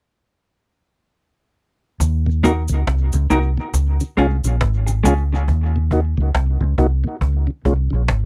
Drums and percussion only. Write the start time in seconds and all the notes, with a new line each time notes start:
2.00 cajon bass, cabasa
2.25 cajon slap
2.43 cajon bass, cabasa
2.68 cabasa
2.87 cajon bass, cajon slap
3.11 cajon slap, cabasa
3.30 cajon bass, cabasa
3.74 cajon bass, cabasa
3.99 cajon slap, cabasa
4.18 cajon bass
4.44 cabasa
4.61 cajon bass, cajon slap
4.86 cajon slap, cabasa
5.05 cajon bass, cabasa
5.48 cajon bass
5.73 cajon slap
5.91 cajon bass
6.35 cajon bass, cajon slap
6.59 cajon slap
6.78 cajon bass
7.21 cajon bass
7.47 cajon slap
7.65 cajon bass
8.08 cajon bass, cajon slap